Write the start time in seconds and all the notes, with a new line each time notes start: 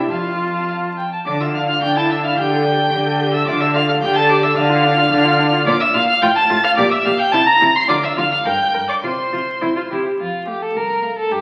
Already playing: C3 E5 G5
0.10 F2 F4 F5 A5
0.68 F5
0.98 G5
1.13 A5
1.26 D3 D4 D5 D6
1.41 F4 E5 E6
1.54 D4 F5 F6
1.69 F4 F5 F6
1.82 D3 D4 G5 G6
1.97 E4 A5 A6
2.11 D4 E5 E6
2.24 E4 F5 F6
2.38 D3 G4 G5 G6
2.51 A4
2.65 G4
2.79 A4
2.92 D3 G4
3.06 A4
3.20 G4
3.34 A4 E5 E6
3.47 D3 F4 D5 D6
3.61 A4 E5 E6
3.74 F4 F5 F6
3.89 A4 F5 F6
4.01 D3 G4 G5 G6
4.16 A4 A5 A6
4.29 G4 D5 D6
4.43 A4 E5 E6
4.56 D3 D4 F5 F6
4.70 F4
4.84 D4
4.97 F4
5.11 D3 D4
5.25 F4
5.39 D4
5.53 F4
5.66 A#2 F4 D5 D6
5.80 E5 E6
5.93 A#2 F4 F5 F6
6.08 F5 F6
6.21 A2 F4 G5 G6
6.36 A5 A6
6.50 A2 F4
6.63 F5 F6
6.77 A#2 G4 D5 D6
6.92 E5 E6
7.05 A#2 G4 F5 F6
7.19 G5 G6
7.32 C3 E4 A5 A6
7.46 A#5 A#6
7.61 C3 E4
7.75 C6 C7
7.88 D3 F4 D5 D6
8.03 E5 E6
8.17 D3 F4 F5 F6
8.32 F5 F6
8.45 G2 A#4 G5 G6
8.74 G2 A#4
8.89 D5 D6
9.03 C3 F4 C5 C6
9.33 C3 F4
9.61 C3 E4
9.76 F4
9.91 C3 E4 G4
10.06 G4
10.20 F2 F4
10.46 A3 G4 F5
10.62 A4
10.76 C2 A#4
11.02 A3 F5
11.19 A4
11.31 G2 G4